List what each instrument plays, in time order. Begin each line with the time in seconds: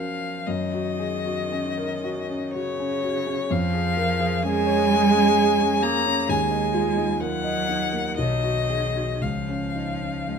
Already playing: cello F3, grand piano C#4 F#4 A#4, violin F5
0.47 grand piano F#2, cello D#3, violin D#5
0.73 grand piano F#4
0.99 grand piano G#4
1.26 grand piano F#4
1.52 grand piano C#4
1.78 grand piano A#4
2.04 grand piano F#4
2.30 grand piano C#4
2.53 cello C#3, grand piano F#4, violin C#5
2.80 grand piano C#4
3.03 grand piano F#4
3.27 grand piano C#4
3.51 grand piano F2, cello F3, violin F5
3.74 grand piano G#4
3.97 grand piano A#4
4.20 grand piano G#4
4.42 cello G#3, grand piano C#4, violin G#5
4.67 grand piano C#5
4.90 grand piano G#4
5.14 grand piano C#4
5.37 grand piano G#4
5.60 grand piano C#4
5.82 cello A#3, grand piano G#4, violin A#5
6.06 grand piano C#4
6.29 grand piano D#2, cello G#3, violin G#5
6.51 grand piano D#4
6.74 grand piano F4
6.97 grand piano D#4
7.20 cello F#3, grand piano A#3, violin F#5
7.44 grand piano D#5
7.69 grand piano D#4
7.93 grand piano A#3
8.17 grand piano B1, cello D#3, violin D#5
8.44 grand piano F#4
8.69 grand piano G#4
8.96 grand piano F#4
9.21 grand piano C#2, cello F3, violin F5
9.49 grand piano C#4
9.75 grand piano D#4
10.02 grand piano C#4
10.28 grand piano G#3